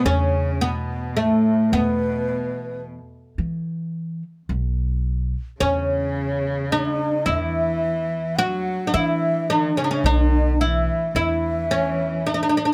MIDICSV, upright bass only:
0, 0, Header, 1, 2, 480
1, 0, Start_track
1, 0, Tempo, 1111111
1, 22, Time_signature, 10, 3, 24, 8
1, 5502, End_track
2, 0, Start_track
2, 0, Title_t, "Upright bass"
2, 0, Program_c, 0, 32
2, 22, Note_on_c, 0, 40, 77
2, 563, Note_off_c, 0, 40, 0
2, 744, Note_on_c, 0, 40, 77
2, 1284, Note_off_c, 0, 40, 0
2, 1461, Note_on_c, 0, 52, 76
2, 1822, Note_off_c, 0, 52, 0
2, 1941, Note_on_c, 0, 35, 86
2, 2301, Note_off_c, 0, 35, 0
2, 2421, Note_on_c, 0, 40, 79
2, 2962, Note_off_c, 0, 40, 0
2, 3140, Note_on_c, 0, 40, 81
2, 3680, Note_off_c, 0, 40, 0
2, 3861, Note_on_c, 0, 52, 82
2, 4221, Note_off_c, 0, 52, 0
2, 4337, Note_on_c, 0, 35, 84
2, 4698, Note_off_c, 0, 35, 0
2, 4816, Note_on_c, 0, 40, 85
2, 5357, Note_off_c, 0, 40, 0
2, 5502, End_track
0, 0, End_of_file